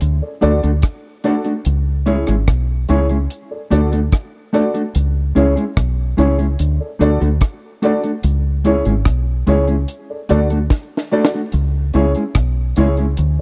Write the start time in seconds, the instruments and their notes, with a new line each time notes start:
0.01 fingered electric bass D2, closed hi-hat
0.22 upright piano A4 D5
0.41 fingered electric bass D2, clean electric guitar A3 D4 F#4 A4, upright piano D4 F#4 A4 D5, closed hi-hat
0.63 fingered electric bass D2, clean electric guitar A3 D4 F#4 A4, closed hi-hat
0.82 kick, cross-stick, closed hi-hat
1.24 clean electric guitar A3 D4 F#4 A4, upright piano D4 F#4 A4 D5, closed hi-hat
1.44 clean electric guitar A3 D4 F#4 A4, closed hi-hat
1.65 fingered electric bass C#2, closed hi-hat
2.06 clean electric guitar G#3 C#4 E4 G#4, upright piano C#4 E4 G#4 C#5, closed hi-hat
2.27 fingered electric bass G#1, clean electric guitar G#3 C#4 E4 G#4, cross-stick, closed hi-hat
2.48 fingered electric bass B1, kick, cross-stick, closed hi-hat
2.89 fingered electric bass C#2, clean electric guitar G#3 C#4 E4 G#4, upright piano C#4 E4 G#4 C#5, closed hi-hat
3.09 clean electric guitar G#3 C#4 E4 G#4, closed hi-hat
3.30 closed hi-hat
3.51 upright piano A4 D5
3.70 fingered electric bass D2, clean electric guitar A3 D4 F#4 A4, upright piano D4 F#4 A4 D5, closed hi-hat
3.92 clean electric guitar A3 D4 F#4 A4, closed hi-hat
4.12 kick, cross-stick, closed hi-hat
4.53 clean electric guitar A3 D4 F#4 A4, upright piano D4 F#4 A4 D5, closed hi-hat
4.74 clean electric guitar A3 D4 F#4 A4, closed hi-hat
4.95 fingered electric bass C#2, closed hi-hat
5.35 fingered electric bass C#2, clean electric guitar G#3 C#4 E4 G#4, upright piano C#4 E4 G#4 C#5, closed hi-hat
5.56 clean electric guitar G#3 C#4 E4 G#4, closed hi-hat
5.77 fingered electric bass B1, kick, cross-stick, closed hi-hat
6.17 fingered electric bass C#2, clean electric guitar G#3 C#4 E4 G#4, upright piano C#4 E4 G#4 C#5, closed hi-hat
6.38 clean electric guitar G#3 C#4 E4 G#4, closed hi-hat
6.59 fingered electric bass D2, closed hi-hat
6.80 upright piano A4 D5
6.99 fingered electric bass D2, clean electric guitar A3 D4 F#4 A4, upright piano D4 F#4 A4 D5, closed hi-hat
7.20 fingered electric bass D2, clean electric guitar A3 D4 F#4 A4, closed hi-hat
7.41 kick, cross-stick, closed hi-hat
7.82 clean electric guitar A3 D4 F#4 A4, upright piano D4 F#4 A4 D5, closed hi-hat
8.03 clean electric guitar A3 D4 F#4 A4, closed hi-hat
8.23 fingered electric bass C#2, closed hi-hat
8.64 clean electric guitar G#3 C#4 E4 G#4, upright piano C#4 E4 G#4 C#5, closed hi-hat
8.85 fingered electric bass G#1, clean electric guitar G#3 C#4 E4 G#4, closed hi-hat
9.05 fingered electric bass B1, kick, cross-stick, closed hi-hat
9.47 fingered electric bass C#2, clean electric guitar G#3 C#4 E4 G#4, upright piano C#4 E4 G#4 C#5, closed hi-hat
9.67 clean electric guitar G#3 C#4 E4 G#4, closed hi-hat
9.88 closed hi-hat
10.10 upright piano A4 D5
10.29 fingered electric bass D2, clean electric guitar A3 D4 F#4 A4, upright piano D4 F#4 A4 D5, closed hi-hat
10.50 clean electric guitar A3 D4 F#4 A4, closed hi-hat
10.70 kick, snare
10.97 snare
11.11 clean electric guitar A3 D4 F#4 A4, upright piano D4 F#4 A4 D5
11.25 snare
11.34 clean electric guitar A3 D4 F#4 A4
11.52 fingered electric bass C#2, closed hi-hat
11.94 fingered electric bass C#2, clean electric guitar G#3 C#4 E4 G#4, upright piano C#4 E4 G#4 C#5, closed hi-hat
12.15 clean electric guitar G#3 C#4 E4 G#4, closed hi-hat
12.35 fingered electric bass B1, kick, cross-stick, closed hi-hat
12.76 fingered electric bass C#2, clean electric guitar G#3 C#4 E4 G#4, upright piano C#4 E4 G#4 C#5, closed hi-hat
12.97 clean electric guitar G#3 C#4 E4 G#4, closed hi-hat
13.17 fingered electric bass D2, closed hi-hat